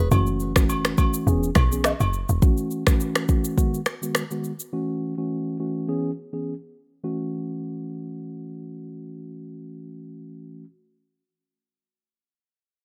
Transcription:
0.11 0.94 F#1 loud
0.11 0.52 E3 medium
0.11 0.52 A3 medium
0.11 0.52 C#4 medium
0.11 0.53 F#4 loud
0.11 high agogo medium
0.11 shaker medium
0.27 shaker soft
0.40 shaker medium
0.56 0.95 E3 medium
0.56 0.95 A3 medium
0.56 0.95 C#4 medium
0.56 0.95 F#4 medium
0.56 finger snap medium
0.56 kick loud
0.56 cross-stick medium
0.56 shaker medium
0.69 high agogo medium
0.69 shaker medium
0.85 finger snap medium
0.85 cross-stick medium
0.85 shaker medium
0.98 1.25 E3 medium
0.98 1.25 A3 medium
0.98 1.25 C#4 medium
0.98 1.25 F#4 medium
0.98 kick medium
0.98 high agogo medium
0.98 shaker medium
1.14 shaker loud
1.27 1.51 E1 loud
1.27 1.48 E3 medium
1.27 1.49 B3 medium
1.27 1.49 C#4 medium
1.27 1.49 G#4 loud
1.27 shaker medium
1.43 shaker medium
1.55 1.93 B1 medium
1.55 finger snap medium
1.55 kick medium
1.55 cross-stick medium
1.55 high agogo medium
1.55 shaker soft
1.71 1.92 E3 medium
1.71 1.92 B3 medium
1.71 1.92 C#4 medium
1.71 1.92 G#4 medium
1.71 shaker medium
1.84 finger snap medium
1.84 cross-stick medium
1.84 low woodblock medium
1.84 shaker medium
2.00 2.25 F#1 medium
2.00 high agogo medium
2.00 shaker medium
2.13 shaker soft
2.29 2.40 E1 medium
2.29 shaker medium
2.42 2.83 E3 medium
2.42 2.83 A3 medium
2.42 2.83 C#4 medium
2.42 2.83 F#4 loud
2.42 kick loud
2.42 shaker medium
2.57 shaker soft
2.71 shaker medium
2.87 3.26 E3 medium
2.87 3.26 A3 medium
2.87 3.26 C#4 medium
2.87 3.26 F#4 medium
2.87 finger snap medium
2.87 kick loud
2.87 cross-stick medium
2.87 shaker medium
3.00 shaker medium
3.15 finger snap medium
3.15 cross-stick medium
3.15 shaker soft
3.28 3.55 E3 medium
3.28 3.56 A3 medium
3.28 3.56 C#4 medium
3.28 3.56 F#4 medium
3.28 kick medium
3.28 shaker medium
3.44 shaker loud
3.57 3.79 D#3 medium
3.57 3.79 G#3 medium
3.57 3.79 B3 medium
3.57 3.79 F#4 loud
3.57 kick medium
3.57 shaker medium
3.74 shaker medium
3.86 finger snap medium
3.86 cross-stick medium
3.86 shaker soft
4.02 4.22 D#3 medium
4.02 4.22 G#3 medium
4.02 4.22 B3 medium
4.02 4.23 F#4 medium
4.02 shaker medium
4.15 finger snap medium
4.15 cross-stick medium
4.15 shaker medium
4.31 4.51 D#3 medium
4.31 4.51 G#3 medium
4.31 4.51 B3 medium
4.31 4.51 F#4 medium
4.31 shaker soft
4.44 shaker soft
4.60 shaker medium
4.73 5.14 E3 medium
4.73 5.14 A3 medium
4.73 5.14 C#4 medium
4.73 5.14 F#4 loud
5.17 5.56 E3 medium
5.17 5.56 A3 medium
5.17 5.56 C#4 medium
5.17 5.57 F#4 medium
5.59 5.86 E3 medium
5.59 5.86 A3 medium
5.59 5.86 C#4 medium
5.59 5.87 F#4 medium
5.88 6.10 E3 medium
5.88 6.10 B3 medium
5.88 6.10 C#4 medium
5.88 6.10 G#4 loud
6.33 6.53 E3 medium
6.33 6.53 B3 medium
6.33 6.53 C#4 medium
6.33 6.53 G#4 medium
7.03 10.63 E3 medium
7.03 10.63 A3 medium
7.03 10.64 C#4 medium
7.03 10.64 F#4 medium

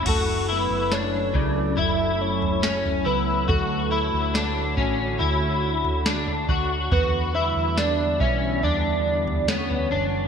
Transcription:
0.06 0.67 F#1 medium
0.06 3.45 F#3 medium
0.06 3.46 A3 medium
0.06 3.46 E4 medium
0.06 0.48 F#4 medium
0.06 3.46 A4 medium
0.06 0.52 A4 medium
0.06 kick medium
0.06 floor tom medium
0.06 crash medium
0.49 0.91 E4 medium
0.49 0.92 B4 loud
0.70 1.31 F#1 medium
0.91 1.34 D4 medium
0.91 1.37 C#5 medium
0.91 snare medium
1.34 1.75 C#2 medium
1.34 1.77 C#3 medium
1.34 1.80 D5 loud
1.34 kick medium
1.77 3.02 F#1 medium
1.77 2.63 E4 medium
1.77 2.23 E5 loud
1.77 floor tom medium
2.21 3.07 C#5 loud
2.42 floor tom medium
2.62 3.05 C#4 medium
2.62 snare loud
2.85 floor tom medium
3.05 3.47 C#2 medium
3.05 3.47 E4 medium
3.05 3.50 B4 loud
3.48 4.10 D2 medium
3.48 6.89 D3 medium
3.48 6.89 A3 medium
3.48 3.91 F#4 medium
3.48 6.89 F#4 medium
3.48 4.34 A4 medium
3.48 6.89 C#5 medium
3.48 kick loud
3.48 floor tom medium
3.91 4.34 E4 medium
4.14 4.74 D2 medium
4.34 4.76 D4 medium
4.34 snare medium
4.77 5.18 A1 medium
4.77 5.20 C#4 medium
4.77 kick medium
5.19 6.45 D2 medium
5.19 6.05 E4 medium
5.19 floor tom medium
5.85 floor tom medium
6.06 6.49 D4 medium
6.06 snare loud
6.27 floor tom medium
6.49 6.89 D2 medium
6.49 6.91 F#4 medium
6.49 kick medium
6.92 7.53 E2 medium
6.92 10.28 D3 medium
6.92 10.28 E3 medium
6.92 10.28 G3 medium
6.92 10.28 B3 medium
6.92 7.34 F#4 medium
6.92 7.36 B4 loud
6.92 kick medium
6.92 floor tom medium
7.35 7.77 E4 medium
7.35 7.79 E5 loud
7.56 8.17 E2 medium
7.77 8.20 D4 medium
7.77 8.23 D5 loud
7.77 snare medium
8.20 8.61 B1 medium
8.20 8.63 C#4 medium
8.20 8.65 E5 loud
8.20 kick loud
8.63 9.88 E2 medium
8.63 9.48 D4 medium
8.63 9.50 D5 loud
8.63 floor tom medium
9.27 floor tom medium
9.48 9.91 B3 medium
9.48 10.28 C#5 medium
9.48 snare loud
9.71 floor tom medium
9.91 10.28 F#1 medium
9.91 10.28 D4 medium

